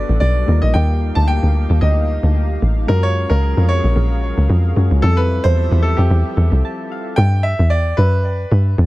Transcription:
0.00 0.43 G3 medium
0.00 0.46 G3 medium
0.00 0.44 B3 medium
0.00 0.45 D4 medium
0.00 0.45 F#4 medium
0.00 0.46 F#4 medium
0.00 0.46 A4 medium
0.00 0.46 B4 medium
0.00 0.19 D5 loud
0.09 0.20 A1 medium
0.20 0.45 B1 loud
0.20 0.59 D5 loud
0.46 0.61 D#2 loud
0.46 2.57 G3 medium
0.46 2.58 A#3 medium
0.46 2.87 A#3 medium
0.46 2.87 D#4 medium
0.46 2.59 D#4 medium
0.46 2.87 G4 medium
0.46 4.99 F5 medium
0.50 2.59 F4 medium
0.50 2.60 A#4 medium
0.62 0.73 A#1 medium
0.62 0.73 D#5 medium
0.74 1.12 D#2 loud
0.74 1.13 G5 loud
1.15 1.40 D2 medium
1.15 1.27 A5 loud
1.28 1.78 G5 loud
1.43 1.67 D2 medium
1.70 1.81 D#2 medium
1.81 2.19 D2 loud
1.81 2.58 D#5 medium
2.23 2.58 D2 loud
2.62 2.86 A1 medium
2.87 3.26 F#2 loud
2.87 5.01 F#3 medium
2.87 4.72 G#3 medium
2.87 4.72 C#4 medium
2.87 4.73 F4 medium
2.87 4.74 F#4 medium
2.87 5.01 G#4 medium
2.87 3.04 A#4 loud
2.87 5.01 A#4 medium
2.92 4.74 A#4 medium
3.03 3.31 C#5 loud
3.30 3.54 C#2 medium
3.30 3.70 A#4 loud
3.57 3.81 F2 loud
3.69 4.72 C#5 loud
3.84 3.95 A#1 medium
3.96 4.33 A#1 loud
4.38 4.48 C#2 loud
4.50 4.73 F2 loud
4.76 4.90 F#2 medium
4.76 5.03 G#3 medium
4.76 5.03 C#4 medium
4.76 5.04 F4 medium
4.76 5.04 F#4 medium
4.76 5.04 G#4 medium
4.91 5.02 C#2 medium
5.01 5.40 F2 loud
5.01 7.15 F3 medium
5.01 7.13 G3 medium
5.01 7.13 C4 medium
5.01 7.14 E4 medium
5.01 7.15 G4 medium
5.01 5.18 A4 loud
5.01 7.15 A4 medium
5.01 7.15 E5 medium
5.05 7.15 F4 medium
5.05 5.12 G#4 medium
5.13 7.18 A4 medium
5.13 5.45 B4 loud
5.44 5.69 E2 medium
5.44 5.80 C5 loud
5.72 5.95 E2 medium
5.83 5.98 A4 medium
5.97 6.09 F2 medium
5.97 6.86 G4 medium
6.10 6.23 E2 loud
6.37 6.50 E2 loud
6.52 6.63 C2 loud
6.65 6.89 A5 medium
6.92 7.16 F5 medium
7.16 7.54 G2 loud
7.16 7.45 G5 loud
7.43 7.71 E5 loud
7.59 7.94 E2 medium
7.70 7.95 D5 medium
7.97 8.45 F#2 loud
7.97 8.74 B4 loud
8.52 8.75 G2 medium
8.78 8.86 E2 loud

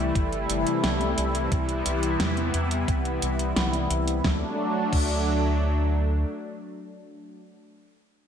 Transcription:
0.00 0.12 C2 medium
0.00 4.20 C3 medium
0.00 4.20 E3 medium
0.00 4.20 G3 medium
0.00 1.49 A3 medium
0.00 4.21 E4 medium
0.15 0.47 G1 loud
0.15 kick loud
0.15 closed hi-hat soft
0.33 closed hi-hat soft
0.49 0.65 G1 loud
0.49 closed hi-hat medium
0.67 closed hi-hat soft
0.84 1.15 C2 medium
0.84 snare loud
0.84 closed hi-hat soft
1.01 closed hi-hat soft
1.18 1.49 C2 medium
1.18 closed hi-hat medium
1.35 closed hi-hat medium
1.52 1.83 C2 loud
1.52 4.22 B3 medium
1.52 kick loud
1.52 closed hi-hat medium
1.69 closed hi-hat soft
1.86 2.17 C2 medium
1.86 closed hi-hat medium
2.03 closed hi-hat medium
2.20 2.51 E2 medium
2.20 snare loud
2.20 closed hi-hat medium
2.37 closed hi-hat soft
2.54 2.85 E2 medium
2.54 closed hi-hat medium
2.71 closed hi-hat medium
2.88 3.19 C2 loud
2.88 kick loud
2.88 closed hi-hat soft
3.05 closed hi-hat soft
3.22 3.53 C2 medium
3.22 closed hi-hat medium
3.39 closed hi-hat soft
3.56 3.87 C2 medium
3.56 snare loud
3.56 closed hi-hat soft
3.73 closed hi-hat soft
3.90 4.21 C2 medium
3.90 closed hi-hat medium
4.08 closed hi-hat medium
4.24 4.43 D2 medium
4.24 7.41 F#3 medium
4.24 7.41 A3 medium
4.24 7.41 D4 medium
4.24 kick loud
4.24 snare medium
4.93 6.25 D2 medium
4.93 kick medium
4.93 crash medium

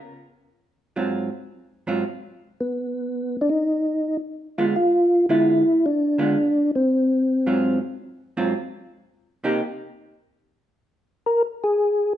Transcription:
0.96 1.29 G#2 soft
0.96 1.29 F#3 medium
0.96 1.29 C4 medium
0.96 1.29 F4 medium
1.87 2.03 G#2 medium
1.87 2.03 F#3 medium
1.87 2.03 C4 medium
1.87 2.03 F4 medium
2.60 3.37 B3 medium
3.41 3.50 D4 medium
3.49 4.17 D#4 medium
4.58 4.74 D3 soft
4.58 4.74 G#3 medium
4.58 4.74 B3 medium
4.58 4.66 F4 medium
4.58 4.74 F4 medium
4.76 5.26 F4 medium
5.29 5.62 D3 soft
5.29 5.62 G#3 medium
5.29 5.62 B3 medium
5.29 5.86 E4 medium
5.29 5.62 F4 medium
5.86 6.71 D4 medium
6.18 6.35 D3 soft
6.18 6.35 G#3 medium
6.18 6.35 B3 medium
6.18 6.36 F4 medium
6.75 7.79 C4 medium
7.46 7.79 G#2 medium
7.46 7.79 F#3 medium
7.46 7.79 C4 medium
7.46 7.79 F4 medium
8.37 8.53 G#2 medium
8.37 8.53 F#3 medium
8.37 8.53 C4 medium
8.37 8.53 F4 medium
9.44 9.60 C3 medium
9.44 9.61 A#3 medium
9.44 9.61 D#4 medium
9.44 9.61 G4 medium
11.26 11.42 A#4 loud
11.64 12.13 G#4 medium

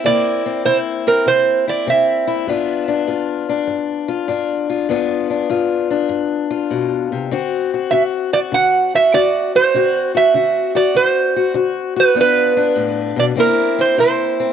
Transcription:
0.04 0.61 C3 medium
0.04 2.45 A#3 medium
0.04 0.45 C4 medium
0.04 0.65 E4 medium
0.04 0.65 D5 medium
0.46 1.06 C4 soft
0.65 1.22 C3 medium
0.65 1.66 E4 medium
0.65 0.76 C5 medium
1.07 1.86 C4 medium
1.07 1.27 A#4 medium
1.26 1.82 C3 medium
1.26 1.65 C5 medium
1.67 2.26 E4 medium
1.67 1.88 D5 medium
1.86 2.43 C3 medium
1.86 2.45 C4 medium
1.86 3.05 E5 medium
2.27 2.47 E4 medium
2.47 3.03 G2 medium
2.47 4.87 B3 medium
2.47 2.88 D4 medium
2.47 3.08 F4 medium
2.88 3.49 D4 medium
3.08 3.64 G2 medium
3.08 4.07 F4 medium
3.49 4.28 D4 medium
3.67 4.24 G2 medium
4.08 4.68 F4 medium
4.28 4.85 G2 medium
4.28 4.90 D4 medium
4.70 4.87 F4 medium
4.89 5.46 G2 medium
4.89 7.29 B3 medium
4.89 5.30 D4 medium
4.89 5.49 F4 medium
5.30 5.90 D4 soft
5.50 6.06 G2 medium
5.50 6.49 F4 medium
5.91 7.32 D4 medium
6.09 6.66 G2 medium
6.51 7.29 F4 medium
6.71 7.11 B2 medium
7.12 7.31 C3 medium
7.31 7.88 D3 medium
7.31 9.71 C4 medium
7.31 7.73 F#4 medium
7.74 7.92 F#4 medium
7.91 8.48 D3 medium
7.91 8.32 F#4 medium
7.91 8.02 E5 medium
8.33 8.93 F#4 medium
8.33 8.39 D5 medium
8.52 9.09 D3 medium
8.52 8.95 F#5 medium
8.94 9.13 F#4 medium
8.94 9.14 E5 medium
9.13 9.70 D3 medium
9.13 9.54 F#4 medium
9.13 9.51 D5 medium
9.55 9.72 F#4 medium
9.55 10.11 C5 medium
9.74 10.30 D3 medium
9.74 12.14 C4 medium
9.74 10.13 F#4 medium
10.15 10.34 F#4 medium
10.15 10.76 E5 medium
10.34 10.91 D3 medium
10.34 10.74 F#4 medium
10.75 11.35 F#4 medium
10.75 10.96 D5 medium
10.95 11.51 D3 medium
10.95 11.99 C5 medium
11.36 11.54 F#4 medium
11.54 12.11 D3 medium
11.54 11.95 F#4 medium
11.96 12.13 F#4 medium
11.96 12.18 B4 medium
12.15 12.72 G2 medium
12.15 13.34 B3 medium
12.15 12.56 D4 medium
12.15 13.35 F4 medium
12.21 13.15 B4 medium
12.57 13.34 D4 medium
12.76 13.16 A2 medium
13.16 13.35 B2 medium
13.16 13.24 D5 medium
13.36 13.93 C3 medium
13.36 14.53 A#3 medium
13.36 13.77 C4 medium
13.36 13.97 E4 medium
13.40 13.80 A#4 medium
13.79 14.39 C4 medium
13.79 13.98 C5 medium
13.98 14.53 C3 medium
13.98 14.53 E4 medium
13.98 14.53 C5 medium
14.40 14.53 C4 medium

